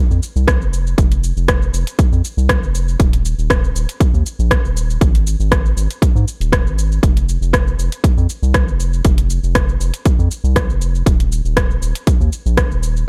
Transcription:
0.11 analog synth bass F2, shaker
0.23 shaker
0.36 analog synth bass C2, shaker
0.48 kick, cross-stick, closed hi-hat, shaker
0.61 analog synth bass F1, shaker
0.73 shaker
0.87 shaker
0.98 analog synth bass F1, kick, closed hi-hat, shaker
1.12 closed hi-hat, shaker
1.24 shaker
1.37 analog synth bass F1, shaker
1.48 kick, cross-stick, closed hi-hat, shaker
1.62 shaker
1.74 analog synth bass F1, shaker
1.87 closed hi-hat, shaker
1.99 kick, closed hi-hat, shaker
2.12 analog synth bass F2, shaker
2.25 shaker
2.37 analog synth bass C2, shaker
2.49 kick, cross-stick, closed hi-hat, shaker
2.62 analog synth bass F1, shaker
2.75 shaker
2.88 shaker
3.00 analog synth bass D#1, kick, closed hi-hat, shaker
3.13 closed hi-hat, shaker
3.25 shaker
3.38 analog synth bass D#1, shaker
3.50 kick, cross-stick, closed hi-hat, shaker
3.64 shaker
3.75 analog synth bass D#1, shaker
3.89 closed hi-hat, shaker
4.00 kick, closed hi-hat, shaker
4.14 analog synth bass D#2, shaker
4.26 shaker
4.39 analog synth bass A#1, shaker
4.51 kick, cross-stick, closed hi-hat, shaker
4.64 analog synth bass D#1, shaker
4.77 shaker
4.90 shaker
5.01 analog synth bass G#1, kick, closed hi-hat, shaker
5.15 closed hi-hat, shaker
5.27 shaker
5.40 analog synth bass G#1, shaker
5.52 kick, cross-stick, closed hi-hat, shaker
5.66 shaker
5.77 analog synth bass G#1, shaker
5.91 closed hi-hat, shaker
6.02 kick, closed hi-hat, shaker
6.15 analog synth bass G#2, shaker
6.28 shaker
6.40 analog synth bass D#1, closed hi-hat, shaker
6.52 kick, cross-stick, closed hi-hat, shaker
6.66 analog synth bass G#1, shaker
6.79 shaker
6.92 shaker
7.03 analog synth bass F1, kick, closed hi-hat, shaker
7.17 closed hi-hat, shaker
7.29 shaker
7.41 analog synth bass F1, shaker
7.53 kick, cross-stick, closed hi-hat, shaker
7.68 shaker
7.78 analog synth bass F1, shaker
7.92 closed hi-hat, shaker
8.04 kick, closed hi-hat, shaker
8.17 analog synth bass F2, shaker
8.29 shaker
8.43 analog synth bass C2, shaker
8.54 kick, cross-stick, closed hi-hat, shaker
8.68 analog synth bass F1, shaker
8.80 shaker
8.93 shaker
9.05 analog synth bass F1, kick, closed hi-hat, shaker
9.18 closed hi-hat, shaker
9.30 shaker
9.43 analog synth bass F1, shaker
9.55 kick, cross-stick, closed hi-hat, shaker
9.69 shaker
9.80 analog synth bass F1, shaker
9.94 closed hi-hat, shaker
10.05 kick, closed hi-hat, shaker
10.19 analog synth bass F2, shaker
10.31 shaker
10.44 analog synth bass C2, shaker
10.56 kick, cross-stick, closed hi-hat, shaker
10.69 analog synth bass F1, shaker
10.81 shaker
10.95 shaker
11.06 analog synth bass D#1, kick, closed hi-hat, shaker
11.20 closed hi-hat, shaker
11.32 shaker
11.45 analog synth bass D#1, shaker
11.57 kick, cross-stick, closed hi-hat, shaker
11.71 shaker
11.82 analog synth bass D#1, shaker
11.95 closed hi-hat, shaker
12.07 kick, closed hi-hat, shaker
12.20 analog synth bass D#2, shaker
12.33 shaker
12.46 analog synth bass A#1, shaker
12.57 kick, cross-stick, closed hi-hat, shaker
12.71 analog synth bass D#1, shaker
12.83 shaker
12.97 shaker

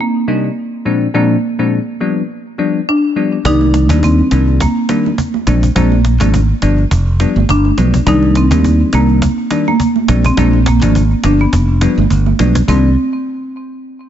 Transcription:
0.01 marimba A#3
0.28 fm electric piano C3 G3 A#3 D4 D#4
0.85 fm electric piano A#2 F3 G#3 C4 D4
1.14 fm electric piano A#2 F3 G#3 C4 D4, marimba A#3
1.59 fm electric piano A#2 F3 G#3 C4 D4
2.01 fm electric piano F3 G3 B3 D4
2.58 fm electric piano F3 G3 B3 D4
2.89 marimba D4
3.16 fm electric piano F3 G3 B3 D4
3.45 fingered electric bass C2, fm electric piano D#3 G3 A#3 D5, marimba D#4, cajon bass, cajon slap, low conga
3.61 cajon slap, high conga
3.74 cajon slap
3.89 fingered electric bass D#2, fm electric piano D#3 G3 A#3 D4, cajon bass, cajon slap, high conga
4.03 marimba C4, cajon bass
4.19 cajon slap
4.31 fingered electric bass C2, fm electric piano D#3 G3 A#3 D4, cajon slap
4.47 cajon slap
4.60 marimba A#3, cajon bass
4.76 cajon slap
4.89 fm electric piano D#3 G3 A#3 D4, cajon slap
5.05 cajon slap, high conga
5.18 cajon bass
5.34 cajon slap, high conga
5.47 fingered electric bass A#1, fm electric piano F3 G#3 C4 D4, cajon slap, high conga, low conga
5.63 cajon bass
5.76 fingered electric bass A#1, fm electric piano F3 G#3 C4 D4, marimba A#3, cajon bass, cajon slap, low conga
5.92 cajon slap, high conga
6.05 cajon slap
6.20 fingered electric bass G#1, fm electric piano F3 G#3 C4 D4, cajon bass, cajon slap, high conga
6.34 cajon bass
6.49 cajon slap
6.62 fingered electric bass G1, fm electric piano F3 G3 B3 D4, cajon slap
6.78 cajon slap
6.91 fingered electric bass F1, cajon bass
7.07 cajon slap
7.20 fm electric piano F3 G3 B3 D4, cajon slap
7.36 fingered electric bass G1, cajon slap, high conga
7.49 fingered electric bass G1, marimba D4, cajon bass
7.65 cajon slap, high conga
7.78 fingered electric bass B1, fm electric piano F3 G3 B3 D4, cajon slap, high conga, low conga
7.94 cajon bass
8.06 fingered electric bass C2, fm electric piano D#3 G3 A#3 D4, marimba D#4, cajon bass, cajon slap, low conga
8.22 cajon slap, high conga
8.35 marimba C4, cajon slap
8.51 fingered electric bass D#2, fm electric piano D#3 G3 A#3 D4, cajon bass, cajon slap, high conga
8.64 cajon bass
8.80 cajon slap
8.93 fingered electric bass C2, fm electric piano D#3 G3 A#3 D4, marimba A#3, cajon slap
9.09 cajon slap
9.22 cajon bass
9.38 cajon slap
9.51 fm electric piano D#3 G3 A#3 D4, cajon slap
9.67 marimba A#3, cajon slap, high conga
9.80 cajon bass
9.96 cajon slap, high conga
10.08 fingered electric bass A#1, fm electric piano F3 G#3 C4 D4, cajon slap, high conga, low conga
10.24 marimba C4, cajon bass
10.37 fingered electric bass A#1, fm electric piano F3 G#3 C4 D4, marimba A#3, cajon bass, cajon slap, low conga
10.53 cajon slap, high conga
10.66 marimba A#3, cajon bass, cajon slap
10.82 fingered electric bass G#1, fm electric piano F3 G#3 C4 D4, cajon bass, cajon slap, high conga
10.95 cajon bass
11.11 cajon slap
11.24 fingered electric bass G1, fm electric piano F3 G3 B3 D4, marimba D4, cajon slap
11.39 marimba B3, cajon slap
11.53 fingered electric bass F1, cajon bass
11.69 cajon slap
11.81 fm electric piano F3 G3 B3 D4, cajon slap
11.98 fingered electric bass G1, cajon slap, high conga
12.10 fingered electric bass G1, cajon bass
12.26 cajon slap, high conga
12.39 fingered electric bass B1, fm electric piano F3 G3 B3 D4, cajon slap, high conga, low conga
12.55 cajon bass, cajon slap
12.68 fingered electric bass C2, fm electric piano D#3 G3 A#3 D4, marimba C4, cajon bass, high conga

